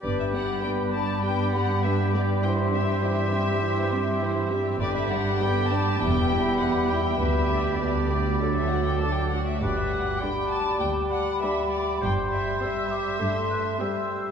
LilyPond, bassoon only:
\new Staff \with { instrumentName = "Bassoon" } { \clef bass \time 4/4 \key g \major \tempo 4 = 100 g1~ | g1 | g4 g4 g2 | g4 g4 fis4. r8 |
g4 g2.~ | g2 a4 g4 | }